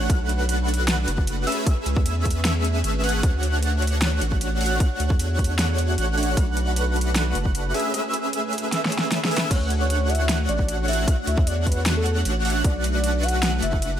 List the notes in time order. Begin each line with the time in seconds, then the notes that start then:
Already playing: A3 D4 F#4
0.10 B1 A3 D4 F#4 B4 F#5 F#6, kick, closed hi-hat
0.29 closed hi-hat
0.49 closed hi-hat
0.69 closed hi-hat
0.74 closed hi-hat
0.88 snare, closed hi-hat
1.08 F#1, closed hi-hat
1.18 kick
1.27 closed hi-hat
1.47 A3 C#4 G#4 B4 E5 E6, open hi-hat
1.52 closed hi-hat
1.66 A3 C#4 G#4 B4 E5 E6, kick, closed hi-hat
1.86 C#2, closed hi-hat
1.96 E2, kick
2.06 closed hi-hat
2.25 kick, closed hi-hat
2.31 closed hi-hat
2.45 snare, closed hi-hat
2.65 closed hi-hat
2.84 G#1, closed hi-hat
3.04 A3 C#4 G#4 B4 F#5 F#6, open hi-hat
3.09 closed hi-hat
3.23 D2 A3 D4 F#4 C#5 F#5, kick, closed hi-hat
3.43 closed hi-hat
3.63 closed hi-hat
3.82 closed hi-hat
3.87 closed hi-hat
4.02 snare, closed hi-hat
4.21 A1, closed hi-hat
4.32 kick
4.41 closed hi-hat
4.61 A3 D4 F#4 C#5 F#5 F#6, open hi-hat
4.66 closed hi-hat
4.80 A3 D4 F#4 C#5 F#5 F#6, kick, closed hi-hat
5.00 D2, closed hi-hat
5.10 E2, kick
5.19 closed hi-hat
5.39 kick, closed hi-hat
5.44 closed hi-hat
5.59 snare, closed hi-hat
5.78 closed hi-hat
5.98 A1, closed hi-hat
6.17 A3 D4 F#4 C#5 F#5 F#6, open hi-hat
6.23 closed hi-hat
6.37 B1 A3 D4 F#4 B4 F#5, kick, closed hi-hat
6.57 closed hi-hat
6.76 closed hi-hat
6.96 closed hi-hat
7.01 closed hi-hat
7.16 snare, closed hi-hat
7.35 F#1, closed hi-hat
7.45 kick
7.55 closed hi-hat
7.74 A3 C#4 G#4 B4 E5 E6, open hi-hat
7.80 closed hi-hat
7.94 A3 C#4 G#4 B4 E5 E6, closed hi-hat
8.14 closed hi-hat
8.33 closed hi-hat
8.53 closed hi-hat
8.58 closed hi-hat
8.72 snare, closed hi-hat
8.85 snare
8.92 closed hi-hat
8.99 snare
9.12 snare, closed hi-hat
9.25 snare
9.31 A3 C#4 G#4 B4 E5 E6, open hi-hat
9.36 snare, closed hi-hat
9.51 D2 A3 D4 F#4 C#5 F#5 F#6, kick, closed hi-hat, crash
9.70 closed hi-hat
9.81 C#5
9.90 closed hi-hat
10.09 E5, closed hi-hat
10.15 closed hi-hat
10.29 snare, closed hi-hat
10.49 A1 D5, closed hi-hat
10.59 kick
10.68 closed hi-hat
10.88 A3 D4 F#4 C#5 E5 F#5 F#6, open hi-hat
10.93 closed hi-hat
11.08 A3 D4 F#4 C#5 F#5 F#6, kick, closed hi-hat
11.27 D2 E5, closed hi-hat
11.38 E2, kick
11.47 D5, closed hi-hat
11.66 B4, kick, closed hi-hat
11.72 closed hi-hat
11.86 snare, closed hi-hat
11.96 A4
12.06 closed hi-hat
12.25 A1, closed hi-hat
12.45 A3 D4 F#4 C#5 F#5 F#6, open hi-hat
12.50 closed hi-hat
12.64 B1 A3 D4 F#4 B4 D5 F#5, kick, closed hi-hat
12.84 closed hi-hat
12.94 D5
13.04 closed hi-hat
13.23 F#5, closed hi-hat
13.28 closed hi-hat
13.43 snare, closed hi-hat
13.62 F#1 E5, closed hi-hat
13.73 kick
13.82 closed hi-hat